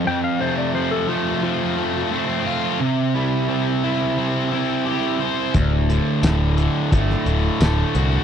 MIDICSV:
0, 0, Header, 1, 6, 480
1, 0, Start_track
1, 0, Tempo, 687285
1, 37, Time_signature, 4, 2, 24, 8
1, 5753, End_track
2, 0, Start_track
2, 0, Title_t, "Electric slide guitar"
2, 0, Program_c, 0, 29
2, 51, Note_on_c, 0, 79, 78
2, 160, Note_off_c, 0, 79, 0
2, 167, Note_on_c, 0, 77, 77
2, 278, Note_off_c, 0, 77, 0
2, 284, Note_on_c, 0, 72, 74
2, 397, Note_off_c, 0, 72, 0
2, 404, Note_on_c, 0, 74, 73
2, 517, Note_off_c, 0, 74, 0
2, 523, Note_on_c, 0, 72, 67
2, 637, Note_off_c, 0, 72, 0
2, 638, Note_on_c, 0, 69, 79
2, 754, Note_off_c, 0, 69, 0
2, 759, Note_on_c, 0, 65, 78
2, 991, Note_off_c, 0, 65, 0
2, 999, Note_on_c, 0, 65, 82
2, 1464, Note_off_c, 0, 65, 0
2, 5753, End_track
3, 0, Start_track
3, 0, Title_t, "Distorted electric guitar"
3, 0, Program_c, 1, 30
3, 273, Note_on_c, 1, 57, 64
3, 744, Note_off_c, 1, 57, 0
3, 990, Note_on_c, 1, 60, 63
3, 1232, Note_on_c, 1, 53, 58
3, 1473, Note_on_c, 1, 57, 66
3, 1954, Note_off_c, 1, 60, 0
3, 1955, Note_off_c, 1, 53, 0
3, 1955, Note_off_c, 1, 57, 0
3, 2196, Note_on_c, 1, 64, 69
3, 2672, Note_off_c, 1, 64, 0
3, 2925, Note_on_c, 1, 67, 62
3, 3165, Note_on_c, 1, 60, 61
3, 3408, Note_on_c, 1, 64, 57
3, 3881, Note_off_c, 1, 60, 0
3, 3881, Note_off_c, 1, 67, 0
3, 3882, Note_off_c, 1, 64, 0
3, 4117, Note_on_c, 1, 50, 64
3, 4593, Note_off_c, 1, 50, 0
3, 4840, Note_on_c, 1, 57, 61
3, 5083, Note_on_c, 1, 45, 60
3, 5321, Note_on_c, 1, 50, 57
3, 5753, Note_off_c, 1, 45, 0
3, 5753, Note_off_c, 1, 50, 0
3, 5753, Note_off_c, 1, 57, 0
3, 5753, End_track
4, 0, Start_track
4, 0, Title_t, "Distorted electric guitar"
4, 0, Program_c, 2, 30
4, 47, Note_on_c, 2, 41, 68
4, 289, Note_on_c, 2, 48, 60
4, 531, Note_on_c, 2, 53, 55
4, 763, Note_on_c, 2, 57, 59
4, 996, Note_off_c, 2, 53, 0
4, 1004, Note_on_c, 2, 53, 64
4, 1237, Note_off_c, 2, 57, 0
4, 1242, Note_off_c, 2, 41, 0
4, 1245, Note_on_c, 2, 57, 63
4, 1483, Note_off_c, 2, 48, 0
4, 1484, Note_on_c, 2, 60, 70
4, 1722, Note_on_c, 2, 65, 68
4, 1960, Note_off_c, 2, 65, 0
4, 1961, Note_off_c, 2, 53, 0
4, 1961, Note_off_c, 2, 57, 0
4, 1961, Note_off_c, 2, 60, 0
4, 1962, Note_on_c, 2, 48, 73
4, 2206, Note_on_c, 2, 55, 66
4, 2436, Note_on_c, 2, 60, 60
4, 2678, Note_on_c, 2, 64, 63
4, 2912, Note_off_c, 2, 60, 0
4, 2920, Note_on_c, 2, 60, 69
4, 3144, Note_off_c, 2, 64, 0
4, 3153, Note_on_c, 2, 64, 60
4, 3159, Note_off_c, 2, 48, 0
4, 3392, Note_on_c, 2, 67, 64
4, 3401, Note_off_c, 2, 55, 0
4, 3630, Note_on_c, 2, 72, 67
4, 3872, Note_on_c, 2, 38, 67
4, 3874, Note_off_c, 2, 67, 0
4, 3874, Note_off_c, 2, 72, 0
4, 3875, Note_off_c, 2, 64, 0
4, 3878, Note_off_c, 2, 60, 0
4, 4113, Note_on_c, 2, 45, 66
4, 4344, Note_off_c, 2, 45, 0
4, 4353, Note_on_c, 2, 45, 57
4, 4587, Note_on_c, 2, 50, 59
4, 4815, Note_off_c, 2, 45, 0
4, 4823, Note_on_c, 2, 45, 62
4, 5056, Note_off_c, 2, 50, 0
4, 5065, Note_on_c, 2, 50, 61
4, 5074, Note_off_c, 2, 38, 0
4, 5315, Note_on_c, 2, 57, 66
4, 5549, Note_on_c, 2, 66, 66
4, 5753, Note_off_c, 2, 45, 0
4, 5753, Note_off_c, 2, 50, 0
4, 5753, Note_off_c, 2, 57, 0
4, 5753, Note_off_c, 2, 66, 0
4, 5753, End_track
5, 0, Start_track
5, 0, Title_t, "Picked electric bass"
5, 0, Program_c, 3, 34
5, 3875, Note_on_c, 3, 26, 84
5, 4181, Note_off_c, 3, 26, 0
5, 4353, Note_on_c, 3, 26, 73
5, 4659, Note_off_c, 3, 26, 0
5, 4833, Note_on_c, 3, 31, 86
5, 4987, Note_off_c, 3, 31, 0
5, 5070, Note_on_c, 3, 26, 74
5, 5225, Note_off_c, 3, 26, 0
5, 5313, Note_on_c, 3, 26, 75
5, 5467, Note_off_c, 3, 26, 0
5, 5553, Note_on_c, 3, 36, 78
5, 5707, Note_off_c, 3, 36, 0
5, 5753, End_track
6, 0, Start_track
6, 0, Title_t, "Drums"
6, 3871, Note_on_c, 9, 42, 67
6, 3873, Note_on_c, 9, 36, 100
6, 3941, Note_off_c, 9, 42, 0
6, 3943, Note_off_c, 9, 36, 0
6, 4118, Note_on_c, 9, 42, 55
6, 4188, Note_off_c, 9, 42, 0
6, 4352, Note_on_c, 9, 42, 77
6, 4352, Note_on_c, 9, 54, 93
6, 4361, Note_on_c, 9, 38, 103
6, 4422, Note_off_c, 9, 42, 0
6, 4422, Note_off_c, 9, 54, 0
6, 4430, Note_off_c, 9, 38, 0
6, 4593, Note_on_c, 9, 42, 57
6, 4663, Note_off_c, 9, 42, 0
6, 4834, Note_on_c, 9, 36, 76
6, 4836, Note_on_c, 9, 42, 73
6, 4904, Note_off_c, 9, 36, 0
6, 4906, Note_off_c, 9, 42, 0
6, 4961, Note_on_c, 9, 38, 28
6, 5031, Note_off_c, 9, 38, 0
6, 5072, Note_on_c, 9, 42, 57
6, 5142, Note_off_c, 9, 42, 0
6, 5312, Note_on_c, 9, 42, 74
6, 5312, Note_on_c, 9, 54, 95
6, 5320, Note_on_c, 9, 38, 96
6, 5382, Note_off_c, 9, 42, 0
6, 5382, Note_off_c, 9, 54, 0
6, 5390, Note_off_c, 9, 38, 0
6, 5551, Note_on_c, 9, 42, 62
6, 5620, Note_off_c, 9, 42, 0
6, 5753, End_track
0, 0, End_of_file